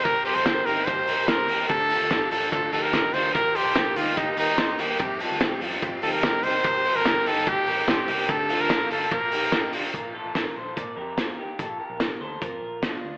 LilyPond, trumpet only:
\new Staff \with { instrumentName = "Trumpet" } { \time 4/4 \key bes \major \tempo 4 = 146 bes'8 g'16 c''8. bes'8 c''4 bes'4 | a'4. a'8 a'8 a'16 bes'8. c''8 | bes'8 g'4 f'8 ees'8 ees'4 g'8~ | g'8 r2 a'16 bes'8. c''8~ |
c''8. bes'8. a'8 g'4 g'4 | a'8. bes'8. a'8 bes'4. r8 | r1 | r1 | }